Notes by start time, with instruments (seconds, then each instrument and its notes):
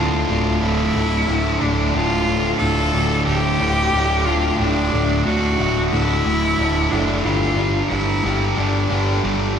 Already playing: picked electric bass D2, distorted electric guitar D2 A2 D3, cello F4
0.28 picked electric bass D1, distorted electric guitar D2 A2 D3
0.61 picked electric bass D1, distorted electric guitar D2 A2 D3, cello E4
0.95 picked electric bass D1, distorted electric guitar D2 A2 D3
1.28 picked electric bass D1, distorted electric guitar D2 A2 D3
1.61 picked electric bass D1, distorted electric guitar D2 A2 D3, cello D4
1.94 picked electric bass D1, distorted electric guitar D2 A2 D3, cello F4
2.27 distorted electric guitar D2 A2 D3
2.59 picked electric bass D1, distorted electric guitar D2 A2 D3, cello A4
2.93 picked electric bass D1, distorted electric guitar D2 A2 D3
3.27 picked electric bass D1, distorted electric guitar D2 A2 D3, cello G4
3.60 picked electric bass D1, distorted electric guitar D2 A2 D3
3.93 picked electric bass D1, distorted electric guitar D2 A2 D3
4.27 distorted electric guitar D2 A2 D3, cello F4
4.59 picked electric bass D1, distorted electric guitar D2 A2 D3, cello D4
4.92 picked electric bass D1, distorted electric guitar D2 A2 D3
5.25 distorted electric guitar D2 A2 D3, picked electric bass D2, cello F#4
5.58 picked electric bass D1, distorted electric guitar D2 A2 D3
5.91 picked electric bass D1, distorted electric guitar D2 A2 D3, cello E4
6.25 picked electric bass D1, distorted electric guitar D2 A2 D3
6.58 picked electric bass D1, distorted electric guitar D2 A2 D3
6.91 picked electric bass F#1, distorted electric guitar D2 A2 D3, cello D4
7.23 picked electric bass G1, distorted electric guitar G2 D3 G3, cello F4
7.58 distorted electric guitar G2 D3 G3
7.89 picked electric bass G1, distorted electric guitar G2 D3 G3, cello E4
8.23 picked electric bass G1, distorted electric guitar G2 D3 G3
8.56 picked electric bass G1, distorted electric guitar G2 D3 G3, cello D4
8.90 picked electric bass G1, distorted electric guitar G2 D3 G3
9.24 picked electric bass G1, distorted electric guitar G2 D3 G3